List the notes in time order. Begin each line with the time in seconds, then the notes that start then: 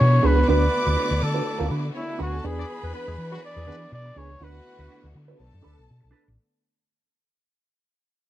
Already playing: E3 B3 D4 F#4 G#4 B4 C#5 B5
0.01 B2
0.13 muted clean electric guitar stroke
0.23 C#2 D4 G#4 B4
0.37 muted clean electric guitar stroke
0.47 D2 D3 A3 D4 E4 F#4 B4 D5 D6
0.61 muted clean electric guitar stroke
0.72 muted clean electric guitar stroke
0.86 D2 D4 F#4 B4
0.96 D4 F#4 B4
1.10 D2, muted clean electric guitar stroke
1.21 D3 A4, muted clean electric guitar stroke
1.34 D4 F#4 B4
1.44 muted clean electric guitar stroke
1.58 D2 D4 F#4 B4
1.69 D3 D4 F#4 B4
1.83 muted clean electric guitar stroke
1.94 C#4 E4 C#5
2.02 D4 D5
2.08 E4 E5, muted clean electric guitar stroke
2.19 D2 D4 F#4 B4 F#5
2.26 G#4 G#5
2.34 A4 A5, muted clean electric guitar stroke
2.42 E2 E3 D4 G#4 B4 B5
2.46 B4
2.57 D4 D5, muted clean electric guitar stroke
2.70 muted clean electric guitar stroke
2.82 E2 B3 D4 G#4 B4
2.93 B3 D4 G#4 B4
3.07 E2 G#3 G#4, muted clean electric guitar stroke
3.18 E3, muted clean electric guitar stroke
3.32 F#3 D4 F#4 G#4 B4
3.43 D5, muted clean electric guitar stroke
3.56 E2 G#3 D4 G#4 B4
3.67 E3 B3 D4 G#4 B4
3.81 muted clean electric guitar stroke
3.92 B2 D5
4.06 muted clean electric guitar stroke
4.16 C#2 D4 G#4 B4 C#5
4.31 muted clean electric guitar stroke
4.40 D2 D3 A3 B3 D4 E4 F#4 B4 F#5
4.56 muted clean electric guitar stroke
4.67 muted clean electric guitar stroke
4.79 D2 D4 F#4 B4
4.91 D4 F#4 B4
5.04 D2, muted clean electric guitar stroke
5.15 D3, muted clean electric guitar stroke
5.28 D4 F#4 B4
5.38 B1 A4 A5, muted clean electric guitar stroke
5.53 F#2, muted clean electric guitar stroke
5.62 D2 D4 A4 B4
5.77 B1, muted clean electric guitar stroke
5.90 B2
6.01 B1, muted clean electric guitar stroke
6.11 D4 A4 B4
6.26 A1, muted clean electric guitar stroke